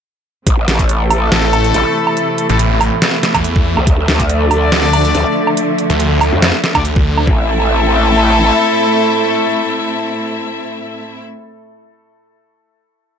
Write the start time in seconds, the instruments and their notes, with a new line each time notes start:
0.47 wobble bass A1, string section C3 E3 A3, ambient pad A4, kick, closed hi-hat
0.59 ambient pad E5
0.68 wobble bass A1, snare, closed hi-hat
0.79 brass ensemble A3 E4 A4, kick, closed hi-hat
0.89 closed hi-hat
1.11 open hi-hat, low woodblock
1.25 ambient pad B5
1.32 detuned saw bass A1, snare, closed hi-hat
1.53 closed hi-hat, low woodblock
1.64 closed hi-hat
1.74 wobble bass A1, closed hi-hat
2.07 low woodblock
2.17 closed hi-hat
2.38 closed hi-hat
2.49 detuned saw bass A1, brass ensemble A3 E4 A4, closed hi-hat
2.59 closed hi-hat
2.81 open hi-hat, low woodblock
3.02 snare, closed hi-hat
3.23 snare, closed hi-hat
3.35 detuned saw bass E2, kick, closed hi-hat, low woodblock
3.44 closed hi-hat
3.56 kick
3.77 wobble bass C2, low woodblock
3.87 wobble bass D2, string section D3 F3, ambient pad D4, kick, closed hi-hat
4.08 wobble bass D2, snare, closed hi-hat
4.20 brass ensemble D4 A4 D5, kick, closed hi-hat
4.30 closed hi-hat
4.51 open hi-hat, low woodblock
4.72 detuned saw bass D2, snare, closed hi-hat
4.93 closed hi-hat, low woodblock
5.05 closed hi-hat
5.15 wobble bass D2, closed hi-hat
5.47 low woodblock
5.57 closed hi-hat
5.78 closed hi-hat
5.90 detuned saw bass D2, closed hi-hat
6.00 closed hi-hat
6.21 open hi-hat, low woodblock
6.33 wobble bass F2
6.42 snare, closed hi-hat
6.64 snare, closed hi-hat
6.75 detuned saw bass D2, brass ensemble D4 A4 D5, kick, closed hi-hat, low woodblock
6.85 closed hi-hat
6.96 kick
7.18 low woodblock
7.27 wobble bass A1, string section A2 A3 C4 E4 E5, brass ensemble A3 E4 A4, ambient pad A4, kick
7.34 ambient pad E5
7.40 ambient pad B5